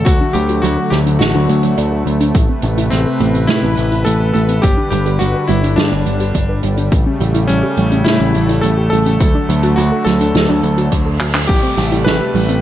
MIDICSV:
0, 0, Header, 1, 7, 480
1, 0, Start_track
1, 0, Tempo, 571429
1, 51, Time_signature, 4, 2, 24, 8
1, 10595, End_track
2, 0, Start_track
2, 0, Title_t, "Electric grand piano"
2, 0, Program_c, 0, 2
2, 41, Note_on_c, 0, 66, 99
2, 280, Note_on_c, 0, 67, 90
2, 293, Note_off_c, 0, 66, 0
2, 519, Note_on_c, 0, 66, 95
2, 533, Note_off_c, 0, 67, 0
2, 748, Note_off_c, 0, 66, 0
2, 759, Note_on_c, 0, 67, 91
2, 814, Note_off_c, 0, 67, 0
2, 1000, Note_on_c, 0, 66, 86
2, 1692, Note_off_c, 0, 66, 0
2, 2439, Note_on_c, 0, 60, 83
2, 2918, Note_on_c, 0, 64, 98
2, 2940, Note_off_c, 0, 60, 0
2, 3399, Note_on_c, 0, 69, 108
2, 3419, Note_off_c, 0, 64, 0
2, 3629, Note_off_c, 0, 69, 0
2, 3641, Note_on_c, 0, 69, 98
2, 3880, Note_on_c, 0, 67, 101
2, 3894, Note_off_c, 0, 69, 0
2, 4107, Note_off_c, 0, 67, 0
2, 4120, Note_on_c, 0, 67, 95
2, 4359, Note_on_c, 0, 66, 96
2, 4373, Note_off_c, 0, 67, 0
2, 4599, Note_on_c, 0, 64, 89
2, 4613, Note_off_c, 0, 66, 0
2, 4839, Note_on_c, 0, 62, 84
2, 4853, Note_off_c, 0, 64, 0
2, 5532, Note_off_c, 0, 62, 0
2, 6279, Note_on_c, 0, 61, 90
2, 6757, Note_on_c, 0, 64, 98
2, 6780, Note_off_c, 0, 61, 0
2, 7236, Note_on_c, 0, 69, 104
2, 7259, Note_off_c, 0, 64, 0
2, 7463, Note_off_c, 0, 69, 0
2, 7475, Note_on_c, 0, 69, 119
2, 8197, Note_on_c, 0, 66, 97
2, 8225, Note_off_c, 0, 69, 0
2, 8427, Note_off_c, 0, 66, 0
2, 8438, Note_on_c, 0, 69, 107
2, 9131, Note_off_c, 0, 69, 0
2, 9639, Note_on_c, 0, 67, 103
2, 10118, Note_on_c, 0, 71, 106
2, 10140, Note_off_c, 0, 67, 0
2, 10595, Note_off_c, 0, 71, 0
2, 10595, End_track
3, 0, Start_track
3, 0, Title_t, "Synth arpeggio sound"
3, 0, Program_c, 1, 84
3, 51, Note_on_c, 1, 54, 77
3, 165, Note_off_c, 1, 54, 0
3, 170, Note_on_c, 1, 62, 100
3, 285, Note_off_c, 1, 62, 0
3, 290, Note_on_c, 1, 54, 73
3, 371, Note_off_c, 1, 54, 0
3, 412, Note_on_c, 1, 66, 78
3, 460, Note_off_c, 1, 66, 0
3, 532, Note_on_c, 1, 54, 81
3, 611, Note_off_c, 1, 54, 0
3, 652, Note_on_c, 1, 69, 75
3, 731, Note_off_c, 1, 69, 0
3, 772, Note_on_c, 1, 54, 103
3, 886, Note_off_c, 1, 54, 0
3, 892, Note_on_c, 1, 62, 75
3, 939, Note_off_c, 1, 62, 0
3, 1012, Note_on_c, 1, 54, 78
3, 1126, Note_off_c, 1, 54, 0
3, 1131, Note_on_c, 1, 62, 99
3, 1245, Note_off_c, 1, 62, 0
3, 1251, Note_on_c, 1, 57, 74
3, 1330, Note_off_c, 1, 57, 0
3, 1371, Note_on_c, 1, 54, 99
3, 1485, Note_off_c, 1, 54, 0
3, 1492, Note_on_c, 1, 74, 85
3, 1539, Note_off_c, 1, 74, 0
3, 1611, Note_on_c, 1, 69, 101
3, 1725, Note_off_c, 1, 69, 0
3, 1731, Note_on_c, 1, 57, 95
3, 1811, Note_off_c, 1, 57, 0
3, 1852, Note_on_c, 1, 62, 101
3, 1966, Note_off_c, 1, 62, 0
3, 1972, Note_on_c, 1, 57, 80
3, 2086, Note_off_c, 1, 57, 0
3, 2093, Note_on_c, 1, 60, 103
3, 2206, Note_off_c, 1, 60, 0
3, 2213, Note_on_c, 1, 57, 74
3, 2292, Note_off_c, 1, 57, 0
3, 2332, Note_on_c, 1, 64, 82
3, 2379, Note_off_c, 1, 64, 0
3, 2452, Note_on_c, 1, 57, 81
3, 2531, Note_off_c, 1, 57, 0
3, 2571, Note_on_c, 1, 69, 73
3, 2651, Note_off_c, 1, 69, 0
3, 2691, Note_on_c, 1, 57, 101
3, 2805, Note_off_c, 1, 57, 0
3, 2810, Note_on_c, 1, 60, 77
3, 2859, Note_off_c, 1, 60, 0
3, 2931, Note_on_c, 1, 57, 81
3, 3045, Note_off_c, 1, 57, 0
3, 3050, Note_on_c, 1, 60, 96
3, 3165, Note_off_c, 1, 60, 0
3, 3171, Note_on_c, 1, 57, 73
3, 3251, Note_off_c, 1, 57, 0
3, 3292, Note_on_c, 1, 64, 72
3, 3339, Note_off_c, 1, 64, 0
3, 3412, Note_on_c, 1, 57, 83
3, 3491, Note_off_c, 1, 57, 0
3, 3531, Note_on_c, 1, 69, 76
3, 3611, Note_off_c, 1, 69, 0
3, 3651, Note_on_c, 1, 57, 95
3, 3765, Note_off_c, 1, 57, 0
3, 3771, Note_on_c, 1, 60, 75
3, 3819, Note_off_c, 1, 60, 0
3, 3892, Note_on_c, 1, 55, 78
3, 4006, Note_off_c, 1, 55, 0
3, 4012, Note_on_c, 1, 62, 98
3, 4126, Note_off_c, 1, 62, 0
3, 4131, Note_on_c, 1, 55, 77
3, 4211, Note_off_c, 1, 55, 0
3, 4252, Note_on_c, 1, 67, 78
3, 4299, Note_off_c, 1, 67, 0
3, 4372, Note_on_c, 1, 55, 82
3, 4451, Note_off_c, 1, 55, 0
3, 4491, Note_on_c, 1, 71, 75
3, 4571, Note_off_c, 1, 71, 0
3, 4612, Note_on_c, 1, 55, 103
3, 4726, Note_off_c, 1, 55, 0
3, 4731, Note_on_c, 1, 62, 76
3, 4779, Note_off_c, 1, 62, 0
3, 4852, Note_on_c, 1, 55, 83
3, 4966, Note_off_c, 1, 55, 0
3, 4971, Note_on_c, 1, 62, 100
3, 5085, Note_off_c, 1, 62, 0
3, 5091, Note_on_c, 1, 55, 72
3, 5171, Note_off_c, 1, 55, 0
3, 5211, Note_on_c, 1, 67, 74
3, 5259, Note_off_c, 1, 67, 0
3, 5331, Note_on_c, 1, 55, 80
3, 5411, Note_off_c, 1, 55, 0
3, 5452, Note_on_c, 1, 71, 77
3, 5531, Note_off_c, 1, 71, 0
3, 5570, Note_on_c, 1, 55, 103
3, 5685, Note_off_c, 1, 55, 0
3, 5692, Note_on_c, 1, 62, 77
3, 5739, Note_off_c, 1, 62, 0
3, 5811, Note_on_c, 1, 55, 77
3, 5925, Note_off_c, 1, 55, 0
3, 5932, Note_on_c, 1, 61, 100
3, 6046, Note_off_c, 1, 61, 0
3, 6052, Note_on_c, 1, 55, 77
3, 6131, Note_off_c, 1, 55, 0
3, 6172, Note_on_c, 1, 64, 79
3, 6219, Note_off_c, 1, 64, 0
3, 6292, Note_on_c, 1, 55, 79
3, 6371, Note_off_c, 1, 55, 0
3, 6412, Note_on_c, 1, 67, 76
3, 6491, Note_off_c, 1, 67, 0
3, 6532, Note_on_c, 1, 55, 103
3, 6646, Note_off_c, 1, 55, 0
3, 6652, Note_on_c, 1, 61, 74
3, 6699, Note_off_c, 1, 61, 0
3, 6771, Note_on_c, 1, 55, 81
3, 6885, Note_off_c, 1, 55, 0
3, 6891, Note_on_c, 1, 61, 99
3, 7005, Note_off_c, 1, 61, 0
3, 7013, Note_on_c, 1, 55, 73
3, 7092, Note_off_c, 1, 55, 0
3, 7132, Note_on_c, 1, 64, 75
3, 7180, Note_off_c, 1, 64, 0
3, 7252, Note_on_c, 1, 55, 82
3, 7331, Note_off_c, 1, 55, 0
3, 7372, Note_on_c, 1, 67, 80
3, 7451, Note_off_c, 1, 67, 0
3, 7492, Note_on_c, 1, 55, 98
3, 7606, Note_off_c, 1, 55, 0
3, 7612, Note_on_c, 1, 61, 75
3, 7659, Note_off_c, 1, 61, 0
3, 7732, Note_on_c, 1, 54, 78
3, 7846, Note_off_c, 1, 54, 0
3, 7852, Note_on_c, 1, 62, 99
3, 7966, Note_off_c, 1, 62, 0
3, 7972, Note_on_c, 1, 54, 75
3, 8051, Note_off_c, 1, 54, 0
3, 8092, Note_on_c, 1, 66, 82
3, 8140, Note_off_c, 1, 66, 0
3, 8211, Note_on_c, 1, 54, 80
3, 8291, Note_off_c, 1, 54, 0
3, 8332, Note_on_c, 1, 69, 77
3, 8411, Note_off_c, 1, 69, 0
3, 8452, Note_on_c, 1, 54, 104
3, 8566, Note_off_c, 1, 54, 0
3, 8572, Note_on_c, 1, 62, 78
3, 8619, Note_off_c, 1, 62, 0
3, 8692, Note_on_c, 1, 54, 78
3, 8806, Note_off_c, 1, 54, 0
3, 8810, Note_on_c, 1, 62, 96
3, 8925, Note_off_c, 1, 62, 0
3, 8930, Note_on_c, 1, 54, 74
3, 9011, Note_off_c, 1, 54, 0
3, 9051, Note_on_c, 1, 66, 72
3, 9099, Note_off_c, 1, 66, 0
3, 9171, Note_on_c, 1, 54, 84
3, 9251, Note_off_c, 1, 54, 0
3, 9291, Note_on_c, 1, 69, 80
3, 9371, Note_off_c, 1, 69, 0
3, 9411, Note_on_c, 1, 54, 101
3, 9525, Note_off_c, 1, 54, 0
3, 9531, Note_on_c, 1, 62, 78
3, 9579, Note_off_c, 1, 62, 0
3, 9651, Note_on_c, 1, 55, 80
3, 9765, Note_off_c, 1, 55, 0
3, 9770, Note_on_c, 1, 60, 104
3, 9885, Note_off_c, 1, 60, 0
3, 9890, Note_on_c, 1, 55, 76
3, 9971, Note_off_c, 1, 55, 0
3, 10011, Note_on_c, 1, 64, 81
3, 10059, Note_off_c, 1, 64, 0
3, 10131, Note_on_c, 1, 55, 82
3, 10211, Note_off_c, 1, 55, 0
3, 10250, Note_on_c, 1, 67, 77
3, 10330, Note_off_c, 1, 67, 0
3, 10371, Note_on_c, 1, 55, 104
3, 10485, Note_off_c, 1, 55, 0
3, 10490, Note_on_c, 1, 60, 78
3, 10539, Note_off_c, 1, 60, 0
3, 10595, End_track
4, 0, Start_track
4, 0, Title_t, "Analog synth pad"
4, 0, Program_c, 2, 89
4, 51, Note_on_c, 2, 50, 81
4, 51, Note_on_c, 2, 54, 73
4, 51, Note_on_c, 2, 57, 86
4, 1952, Note_off_c, 2, 50, 0
4, 1952, Note_off_c, 2, 54, 0
4, 1972, Note_on_c, 2, 48, 81
4, 1973, Note_on_c, 2, 71, 87
4, 3858, Note_off_c, 2, 57, 0
4, 3873, Note_off_c, 2, 48, 0
4, 3891, Note_on_c, 2, 50, 80
4, 3891, Note_on_c, 2, 55, 72
4, 5779, Note_off_c, 2, 71, 0
4, 5792, Note_off_c, 2, 50, 0
4, 5812, Note_on_c, 2, 49, 78
4, 5812, Note_on_c, 2, 57, 89
4, 7698, Note_off_c, 2, 55, 0
4, 7712, Note_off_c, 2, 49, 0
4, 7732, Note_on_c, 2, 50, 79
4, 7732, Note_on_c, 2, 54, 73
4, 9618, Note_off_c, 2, 57, 0
4, 9632, Note_off_c, 2, 50, 0
4, 9632, Note_off_c, 2, 54, 0
4, 9651, Note_on_c, 2, 48, 82
4, 9651, Note_on_c, 2, 55, 73
4, 9651, Note_on_c, 2, 57, 90
4, 10595, Note_off_c, 2, 48, 0
4, 10595, Note_off_c, 2, 55, 0
4, 10595, Note_off_c, 2, 57, 0
4, 10595, End_track
5, 0, Start_track
5, 0, Title_t, "Picked electric bass"
5, 0, Program_c, 3, 34
5, 52, Note_on_c, 3, 38, 96
5, 158, Note_off_c, 3, 38, 0
5, 291, Note_on_c, 3, 38, 97
5, 503, Note_off_c, 3, 38, 0
5, 530, Note_on_c, 3, 38, 90
5, 637, Note_off_c, 3, 38, 0
5, 771, Note_on_c, 3, 38, 85
5, 983, Note_off_c, 3, 38, 0
5, 1011, Note_on_c, 3, 33, 81
5, 1117, Note_off_c, 3, 33, 0
5, 1131, Note_on_c, 3, 38, 90
5, 1237, Note_off_c, 3, 38, 0
5, 1251, Note_on_c, 3, 38, 85
5, 1463, Note_off_c, 3, 38, 0
5, 1491, Note_on_c, 3, 38, 83
5, 1704, Note_off_c, 3, 38, 0
5, 1730, Note_on_c, 3, 38, 80
5, 1943, Note_off_c, 3, 38, 0
5, 1972, Note_on_c, 3, 33, 95
5, 2078, Note_off_c, 3, 33, 0
5, 2210, Note_on_c, 3, 33, 98
5, 2423, Note_off_c, 3, 33, 0
5, 2450, Note_on_c, 3, 33, 93
5, 2557, Note_off_c, 3, 33, 0
5, 2691, Note_on_c, 3, 33, 86
5, 2903, Note_off_c, 3, 33, 0
5, 2931, Note_on_c, 3, 45, 80
5, 3038, Note_off_c, 3, 45, 0
5, 3051, Note_on_c, 3, 33, 91
5, 3157, Note_off_c, 3, 33, 0
5, 3172, Note_on_c, 3, 33, 83
5, 3384, Note_off_c, 3, 33, 0
5, 3411, Note_on_c, 3, 33, 81
5, 3623, Note_off_c, 3, 33, 0
5, 3651, Note_on_c, 3, 33, 82
5, 3863, Note_off_c, 3, 33, 0
5, 3892, Note_on_c, 3, 31, 95
5, 3998, Note_off_c, 3, 31, 0
5, 4131, Note_on_c, 3, 31, 101
5, 4344, Note_off_c, 3, 31, 0
5, 4371, Note_on_c, 3, 31, 91
5, 4477, Note_off_c, 3, 31, 0
5, 4612, Note_on_c, 3, 31, 85
5, 4824, Note_off_c, 3, 31, 0
5, 4852, Note_on_c, 3, 43, 80
5, 4958, Note_off_c, 3, 43, 0
5, 4971, Note_on_c, 3, 31, 92
5, 5077, Note_off_c, 3, 31, 0
5, 5090, Note_on_c, 3, 31, 87
5, 5303, Note_off_c, 3, 31, 0
5, 5332, Note_on_c, 3, 31, 83
5, 5544, Note_off_c, 3, 31, 0
5, 5571, Note_on_c, 3, 31, 86
5, 5783, Note_off_c, 3, 31, 0
5, 5812, Note_on_c, 3, 33, 94
5, 5918, Note_off_c, 3, 33, 0
5, 6051, Note_on_c, 3, 33, 101
5, 6263, Note_off_c, 3, 33, 0
5, 6291, Note_on_c, 3, 33, 91
5, 6397, Note_off_c, 3, 33, 0
5, 6531, Note_on_c, 3, 33, 85
5, 6743, Note_off_c, 3, 33, 0
5, 6771, Note_on_c, 3, 45, 79
5, 6877, Note_off_c, 3, 45, 0
5, 6891, Note_on_c, 3, 33, 91
5, 6997, Note_off_c, 3, 33, 0
5, 7011, Note_on_c, 3, 33, 87
5, 7223, Note_off_c, 3, 33, 0
5, 7251, Note_on_c, 3, 33, 87
5, 7463, Note_off_c, 3, 33, 0
5, 7490, Note_on_c, 3, 33, 85
5, 7703, Note_off_c, 3, 33, 0
5, 7732, Note_on_c, 3, 38, 98
5, 7838, Note_off_c, 3, 38, 0
5, 7971, Note_on_c, 3, 38, 101
5, 8183, Note_off_c, 3, 38, 0
5, 8211, Note_on_c, 3, 38, 98
5, 8317, Note_off_c, 3, 38, 0
5, 8452, Note_on_c, 3, 38, 87
5, 8664, Note_off_c, 3, 38, 0
5, 8691, Note_on_c, 3, 38, 96
5, 8797, Note_off_c, 3, 38, 0
5, 8812, Note_on_c, 3, 38, 96
5, 8918, Note_off_c, 3, 38, 0
5, 8931, Note_on_c, 3, 38, 101
5, 9144, Note_off_c, 3, 38, 0
5, 9172, Note_on_c, 3, 38, 88
5, 9384, Note_off_c, 3, 38, 0
5, 9412, Note_on_c, 3, 38, 80
5, 9624, Note_off_c, 3, 38, 0
5, 9652, Note_on_c, 3, 33, 101
5, 9758, Note_off_c, 3, 33, 0
5, 9891, Note_on_c, 3, 33, 106
5, 10104, Note_off_c, 3, 33, 0
5, 10130, Note_on_c, 3, 33, 94
5, 10237, Note_off_c, 3, 33, 0
5, 10370, Note_on_c, 3, 33, 89
5, 10583, Note_off_c, 3, 33, 0
5, 10595, End_track
6, 0, Start_track
6, 0, Title_t, "Reverse cymbal"
6, 0, Program_c, 4, 119
6, 8691, Note_on_c, 4, 60, 77
6, 9651, Note_off_c, 4, 60, 0
6, 10595, End_track
7, 0, Start_track
7, 0, Title_t, "Drums"
7, 51, Note_on_c, 9, 42, 96
7, 52, Note_on_c, 9, 36, 122
7, 135, Note_off_c, 9, 42, 0
7, 136, Note_off_c, 9, 36, 0
7, 292, Note_on_c, 9, 42, 68
7, 376, Note_off_c, 9, 42, 0
7, 409, Note_on_c, 9, 42, 71
7, 493, Note_off_c, 9, 42, 0
7, 538, Note_on_c, 9, 42, 98
7, 622, Note_off_c, 9, 42, 0
7, 769, Note_on_c, 9, 38, 40
7, 771, Note_on_c, 9, 42, 77
7, 853, Note_off_c, 9, 38, 0
7, 855, Note_off_c, 9, 42, 0
7, 894, Note_on_c, 9, 42, 73
7, 978, Note_off_c, 9, 42, 0
7, 1014, Note_on_c, 9, 38, 113
7, 1015, Note_on_c, 9, 42, 97
7, 1098, Note_off_c, 9, 38, 0
7, 1099, Note_off_c, 9, 42, 0
7, 1253, Note_on_c, 9, 42, 77
7, 1337, Note_off_c, 9, 42, 0
7, 1368, Note_on_c, 9, 42, 75
7, 1452, Note_off_c, 9, 42, 0
7, 1491, Note_on_c, 9, 42, 95
7, 1575, Note_off_c, 9, 42, 0
7, 1736, Note_on_c, 9, 42, 74
7, 1820, Note_off_c, 9, 42, 0
7, 1851, Note_on_c, 9, 42, 77
7, 1935, Note_off_c, 9, 42, 0
7, 1971, Note_on_c, 9, 42, 92
7, 1972, Note_on_c, 9, 36, 118
7, 2055, Note_off_c, 9, 42, 0
7, 2056, Note_off_c, 9, 36, 0
7, 2202, Note_on_c, 9, 42, 67
7, 2286, Note_off_c, 9, 42, 0
7, 2331, Note_on_c, 9, 42, 77
7, 2415, Note_off_c, 9, 42, 0
7, 2447, Note_on_c, 9, 38, 35
7, 2448, Note_on_c, 9, 42, 86
7, 2531, Note_off_c, 9, 38, 0
7, 2532, Note_off_c, 9, 42, 0
7, 2691, Note_on_c, 9, 42, 70
7, 2775, Note_off_c, 9, 42, 0
7, 2810, Note_on_c, 9, 42, 66
7, 2894, Note_off_c, 9, 42, 0
7, 2924, Note_on_c, 9, 42, 95
7, 2930, Note_on_c, 9, 38, 106
7, 3008, Note_off_c, 9, 42, 0
7, 3014, Note_off_c, 9, 38, 0
7, 3168, Note_on_c, 9, 42, 73
7, 3252, Note_off_c, 9, 42, 0
7, 3291, Note_on_c, 9, 42, 66
7, 3375, Note_off_c, 9, 42, 0
7, 3412, Note_on_c, 9, 42, 99
7, 3496, Note_off_c, 9, 42, 0
7, 3652, Note_on_c, 9, 42, 67
7, 3736, Note_off_c, 9, 42, 0
7, 3766, Note_on_c, 9, 42, 77
7, 3850, Note_off_c, 9, 42, 0
7, 3888, Note_on_c, 9, 42, 98
7, 3892, Note_on_c, 9, 36, 109
7, 3972, Note_off_c, 9, 42, 0
7, 3976, Note_off_c, 9, 36, 0
7, 4129, Note_on_c, 9, 42, 73
7, 4213, Note_off_c, 9, 42, 0
7, 4250, Note_on_c, 9, 42, 68
7, 4334, Note_off_c, 9, 42, 0
7, 4369, Note_on_c, 9, 42, 88
7, 4453, Note_off_c, 9, 42, 0
7, 4606, Note_on_c, 9, 42, 72
7, 4690, Note_off_c, 9, 42, 0
7, 4736, Note_on_c, 9, 42, 71
7, 4820, Note_off_c, 9, 42, 0
7, 4849, Note_on_c, 9, 42, 90
7, 4855, Note_on_c, 9, 38, 109
7, 4933, Note_off_c, 9, 42, 0
7, 4939, Note_off_c, 9, 38, 0
7, 5090, Note_on_c, 9, 42, 66
7, 5174, Note_off_c, 9, 42, 0
7, 5207, Note_on_c, 9, 42, 72
7, 5291, Note_off_c, 9, 42, 0
7, 5329, Note_on_c, 9, 42, 88
7, 5332, Note_on_c, 9, 36, 57
7, 5413, Note_off_c, 9, 42, 0
7, 5416, Note_off_c, 9, 36, 0
7, 5567, Note_on_c, 9, 42, 76
7, 5651, Note_off_c, 9, 42, 0
7, 5690, Note_on_c, 9, 42, 69
7, 5774, Note_off_c, 9, 42, 0
7, 5811, Note_on_c, 9, 42, 90
7, 5812, Note_on_c, 9, 36, 109
7, 5895, Note_off_c, 9, 42, 0
7, 5896, Note_off_c, 9, 36, 0
7, 6054, Note_on_c, 9, 42, 77
7, 6138, Note_off_c, 9, 42, 0
7, 6169, Note_on_c, 9, 42, 79
7, 6253, Note_off_c, 9, 42, 0
7, 6291, Note_on_c, 9, 42, 96
7, 6375, Note_off_c, 9, 42, 0
7, 6529, Note_on_c, 9, 42, 78
7, 6613, Note_off_c, 9, 42, 0
7, 6649, Note_on_c, 9, 42, 68
7, 6733, Note_off_c, 9, 42, 0
7, 6769, Note_on_c, 9, 42, 98
7, 6775, Note_on_c, 9, 38, 106
7, 6853, Note_off_c, 9, 42, 0
7, 6859, Note_off_c, 9, 38, 0
7, 7009, Note_on_c, 9, 42, 72
7, 7093, Note_off_c, 9, 42, 0
7, 7131, Note_on_c, 9, 42, 79
7, 7215, Note_off_c, 9, 42, 0
7, 7246, Note_on_c, 9, 42, 102
7, 7330, Note_off_c, 9, 42, 0
7, 7494, Note_on_c, 9, 42, 74
7, 7578, Note_off_c, 9, 42, 0
7, 7611, Note_on_c, 9, 42, 66
7, 7695, Note_off_c, 9, 42, 0
7, 7729, Note_on_c, 9, 42, 91
7, 7732, Note_on_c, 9, 36, 114
7, 7813, Note_off_c, 9, 42, 0
7, 7816, Note_off_c, 9, 36, 0
7, 7976, Note_on_c, 9, 42, 85
7, 8060, Note_off_c, 9, 42, 0
7, 8088, Note_on_c, 9, 42, 74
7, 8172, Note_off_c, 9, 42, 0
7, 8215, Note_on_c, 9, 42, 90
7, 8299, Note_off_c, 9, 42, 0
7, 8453, Note_on_c, 9, 38, 38
7, 8453, Note_on_c, 9, 42, 75
7, 8537, Note_off_c, 9, 38, 0
7, 8537, Note_off_c, 9, 42, 0
7, 8574, Note_on_c, 9, 42, 73
7, 8658, Note_off_c, 9, 42, 0
7, 8692, Note_on_c, 9, 42, 85
7, 8698, Note_on_c, 9, 38, 104
7, 8776, Note_off_c, 9, 42, 0
7, 8782, Note_off_c, 9, 38, 0
7, 8934, Note_on_c, 9, 42, 68
7, 9018, Note_off_c, 9, 42, 0
7, 9052, Note_on_c, 9, 42, 76
7, 9136, Note_off_c, 9, 42, 0
7, 9170, Note_on_c, 9, 42, 91
7, 9172, Note_on_c, 9, 36, 59
7, 9254, Note_off_c, 9, 42, 0
7, 9256, Note_off_c, 9, 36, 0
7, 9411, Note_on_c, 9, 39, 76
7, 9412, Note_on_c, 9, 42, 80
7, 9495, Note_off_c, 9, 39, 0
7, 9496, Note_off_c, 9, 42, 0
7, 9529, Note_on_c, 9, 39, 102
7, 9535, Note_on_c, 9, 42, 69
7, 9613, Note_off_c, 9, 39, 0
7, 9619, Note_off_c, 9, 42, 0
7, 9647, Note_on_c, 9, 42, 101
7, 9652, Note_on_c, 9, 36, 120
7, 9660, Note_on_c, 9, 49, 94
7, 9731, Note_off_c, 9, 42, 0
7, 9736, Note_off_c, 9, 36, 0
7, 9744, Note_off_c, 9, 49, 0
7, 9885, Note_on_c, 9, 38, 34
7, 9887, Note_on_c, 9, 46, 92
7, 9969, Note_off_c, 9, 38, 0
7, 9971, Note_off_c, 9, 46, 0
7, 10012, Note_on_c, 9, 42, 77
7, 10096, Note_off_c, 9, 42, 0
7, 10133, Note_on_c, 9, 38, 110
7, 10135, Note_on_c, 9, 42, 100
7, 10217, Note_off_c, 9, 38, 0
7, 10219, Note_off_c, 9, 42, 0
7, 10370, Note_on_c, 9, 46, 82
7, 10454, Note_off_c, 9, 46, 0
7, 10491, Note_on_c, 9, 42, 84
7, 10575, Note_off_c, 9, 42, 0
7, 10595, End_track
0, 0, End_of_file